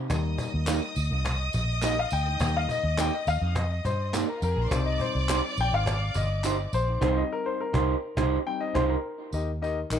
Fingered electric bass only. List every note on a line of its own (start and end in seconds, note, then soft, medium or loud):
0.10 0.35 D#2 medium
0.54 0.79 D#2 medium
0.96 1.09 D2 medium
1.11 1.49 C2 medium
1.54 2.05 A#1 medium
2.12 2.37 D2 medium
2.40 2.66 D#2 loud
2.83 3.09 D#2 loud
3.27 3.40 D#2 medium
3.41 3.79 F2 medium
3.85 4.23 G2 medium
4.42 4.55 F2 medium
4.56 4.69 A#1 medium
4.71 4.96 C2 loud
5.15 5.40 C2 medium
5.58 5.70 A#1 loud
5.72 6.10 G#1 medium
6.16 6.66 G1 medium
6.73 6.98 A#1 medium
7.02 7.21 C2 loud
7.74 7.94 C2 loud
8.17 8.37 C2 loud
8.75 8.95 C2 loud
9.33 9.83 D#2 loud
9.90 9.99 A#1 medium